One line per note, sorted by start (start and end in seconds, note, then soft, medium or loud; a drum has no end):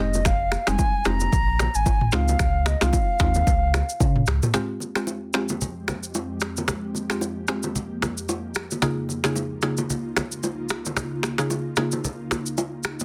0.00 0.56 F1 loud
0.00 0.23 G#3 medium
0.00 0.24 C4 medium
0.00 0.24 D#4 medium
0.00 0.24 G4 loud
0.00 0.27 D#5 medium
0.14 low bongo medium
0.14 shaker medium
0.25 0.70 F5 loud
0.25 finger snap medium
0.25 kick loud
0.25 cross-stick medium
0.25 low conga medium
0.25 shaker medium
0.52 finger snap medium
0.52 cross-stick medium
0.52 low bongo soft
0.52 shaker medium
0.67 0.77 F1 medium
0.67 1.03 G3 medium
0.67 1.03 G#3 medium
0.67 1.03 C4 medium
0.67 1.03 D#4 medium
0.67 1.08 G#5 loud
0.67 finger snap medium
0.67 cross-stick loud
0.67 shaker medium
0.79 kick medium
0.79 high bongo medium
0.79 shaker medium
1.05 1.28 F1 medium
1.05 1.30 G#3 medium
1.05 1.31 C4 medium
1.05 1.31 D#4 medium
1.05 1.31 G4 medium
1.05 1.77 A#5 loud
1.05 finger snap medium
1.05 cross-stick loud
1.05 high bongo medium
1.05 shaker soft
1.20 low bongo medium
1.20 shaker medium
1.33 1.68 A#1 loud
1.33 kick loud
1.33 low conga medium
1.33 shaker medium
1.59 finger snap medium
1.59 cross-stick medium
1.59 low bongo medium
1.59 low conga medium
1.59 shaker medium
1.75 1.84 G#1 medium
1.75 2.15 G#5 loud
1.75 shaker medium
1.86 2.08 G#1 medium
1.86 kick medium
1.86 high bongo medium
1.86 shaker medium
2.01 mid tom loud
2.12 2.35 C#2 loud
2.12 2.38 G#3 medium
2.12 2.38 C4 medium
2.12 2.38 D#4 medium
2.12 2.38 F4 loud
2.12 2.69 F5 loud
2.12 finger snap medium
2.12 cross-stick loud
2.12 shaker medium
2.28 low bongo medium
2.28 shaker medium
2.39 2.75 C#2 loud
2.39 finger snap medium
2.39 kick loud
2.39 cross-stick medium
2.39 low conga medium
2.39 shaker medium
2.66 2.84 D#5 medium
2.66 finger snap medium
2.66 cross-stick medium
2.66 low bongo soft
2.66 shaker medium
2.81 2.91 C2 loud
2.81 3.17 G#3 medium
2.81 3.17 C4 medium
2.81 3.17 D#4 medium
2.81 3.17 F4 medium
2.81 4.27 F5 loud
2.81 finger snap medium
2.81 cross-stick loud
2.81 shaker medium
2.93 kick medium
2.93 high bongo medium
2.93 shaker medium
3.19 3.42 D#2 loud
3.19 3.45 G#3 medium
3.19 3.45 C4 medium
3.19 3.45 D#4 medium
3.19 3.45 F4 medium
3.19 finger snap medium
3.19 kick medium
3.19 cross-stick medium
3.19 high bongo medium
3.19 shaker soft
3.35 low bongo medium
3.35 shaker medium
3.47 3.82 C#2 loud
3.47 kick loud
3.47 low conga medium
3.47 shaker medium
3.74 finger snap medium
3.74 cross-stick medium
3.74 low bongo medium
3.74 low conga medium
3.74 shaker medium
3.89 shaker medium
4.00 4.23 C#3 loud
4.00 kick medium
4.00 high bongo medium
4.00 shaker medium
4.16 mid tom medium
4.26 4.40 C#2 medium
4.26 finger snap medium
4.26 cross-stick loud
4.26 shaker medium
4.43 mid tom medium
4.43 low bongo medium
4.43 shaker medium
4.54 8.79 F2 medium
4.54 8.79 F3 medium
4.54 4.92 G#3 medium
4.54 8.79 G#3 medium
4.54 4.92 C4 medium
4.54 6.66 C4 medium
4.54 4.93 F4 medium
4.54 4.93 G4 loud
4.54 8.79 G4 medium
4.54 finger snap medium
4.54 cross-stick medium
4.54 low conga medium
4.54 shaker medium
4.80 low bongo soft
4.80 shaker soft
4.95 5.31 G#3 medium
4.95 5.31 C4 medium
4.95 5.32 F4 medium
4.95 5.32 G4 medium
4.95 finger snap medium
4.95 cross-stick loud
4.95 shaker medium
5.07 high bongo medium
5.07 shaker medium
5.33 5.59 G#3 medium
5.33 5.59 C4 medium
5.33 5.59 F4 medium
5.33 5.59 G4 medium
5.33 finger snap medium
5.33 cross-stick medium
5.33 high bongo medium
5.33 shaker soft
5.49 low bongo medium
5.49 shaker medium
5.61 low conga medium
5.61 shaker medium
5.88 finger snap medium
5.88 cross-stick medium
5.88 high bongo soft
5.88 low bongo medium
5.88 low conga medium
5.88 shaker medium
6.03 shaker medium
6.15 high bongo medium
6.15 shaker medium
6.40 finger snap medium
6.40 cross-stick medium
6.40 shaker medium
6.57 low bongo medium
6.57 shaker medium
6.68 13.05 A#3 medium
6.68 finger snap medium
6.68 cross-stick medium
6.68 low conga medium
6.68 shaker medium
6.95 low bongo soft
6.95 shaker soft
7.10 7.46 G#3 medium
7.10 7.46 C4 medium
7.10 7.46 F4 medium
7.10 7.46 G4 medium
7.10 finger snap medium
7.10 cross-stick medium
7.10 shaker medium
7.21 high bongo medium
7.21 shaker medium
7.48 7.73 G#3 medium
7.48 7.73 C4 medium
7.48 7.74 F4 medium
7.48 7.74 G4 medium
7.48 finger snap medium
7.48 cross-stick medium
7.48 high bongo medium
7.48 shaker soft
7.63 low bongo medium
7.63 shaker medium
7.75 low conga medium
7.75 shaker medium
8.02 finger snap medium
8.02 cross-stick medium
8.02 high bongo soft
8.02 low bongo medium
8.02 low conga medium
8.02 shaker medium
8.18 shaker medium
8.29 high bongo medium
8.29 shaker medium
8.55 finger snap medium
8.55 cross-stick medium
8.55 shaker medium
8.71 low bongo medium
8.71 shaker medium
8.82 13.05 C#2 medium
8.82 9.21 C#3 medium
8.82 13.05 C#3 medium
8.82 9.21 A#3 medium
8.82 13.05 D#4 medium
8.82 9.21 D#4 medium
8.82 13.05 F4 medium
8.82 9.21 F4 medium
8.82 9.21 G#4 loud
8.82 finger snap medium
8.82 cross-stick medium
8.82 low conga medium
8.82 shaker medium
9.09 low bongo soft
9.09 shaker soft
9.24 9.60 C#3 medium
9.24 9.60 A#3 medium
9.24 9.60 D#4 medium
9.24 9.60 F4 medium
9.24 9.60 G#4 medium
9.24 finger snap medium
9.24 cross-stick loud
9.24 shaker medium
9.36 high bongo medium
9.36 shaker medium
9.62 9.88 C#3 medium
9.62 9.88 A#3 medium
9.62 9.88 D#4 medium
9.62 9.88 F4 medium
9.62 9.88 G#4 medium
9.62 finger snap medium
9.62 cross-stick medium
9.62 high bongo medium
9.62 shaker soft
9.77 low bongo medium
9.77 shaker medium
9.90 low conga medium
9.90 shaker medium
10.17 finger snap medium
10.17 cross-stick medium
10.17 high bongo soft
10.17 low bongo medium
10.17 low conga medium
10.17 shaker medium
10.32 shaker medium
10.43 high bongo medium
10.43 shaker medium
10.69 finger snap medium
10.69 cross-stick medium
10.69 shaker medium
10.85 low bongo medium
10.85 shaker medium
10.97 finger snap medium
10.97 cross-stick medium
10.97 low conga medium
10.97 shaker medium
11.23 finger snap medium
11.23 cross-stick medium
11.23 low bongo soft
11.23 shaker soft
11.38 11.74 C#3 medium
11.38 11.74 A#3 medium
11.38 11.74 D#4 medium
11.38 11.74 F4 medium
11.38 11.75 G#4 medium
11.38 finger snap medium
11.38 cross-stick medium
11.38 shaker medium
11.50 high bongo medium
11.50 shaker medium
11.76 12.02 C#3 medium
11.76 12.02 A#3 medium
11.76 12.02 D#4 medium
11.76 12.02 F4 medium
11.76 12.02 G#4 medium
11.76 finger snap medium
11.76 cross-stick medium
11.76 high bongo medium
11.76 shaker soft
11.92 low bongo medium
11.92 shaker medium
12.04 low conga medium
12.04 shaker medium
12.31 finger snap medium
12.31 cross-stick medium
12.31 high bongo soft
12.31 low bongo medium
12.31 low conga medium
12.31 shaker medium
12.46 shaker medium
12.58 high bongo medium
12.58 shaker medium
12.83 finger snap medium
12.83 cross-stick medium
12.83 shaker medium
13.00 low bongo medium
13.00 shaker medium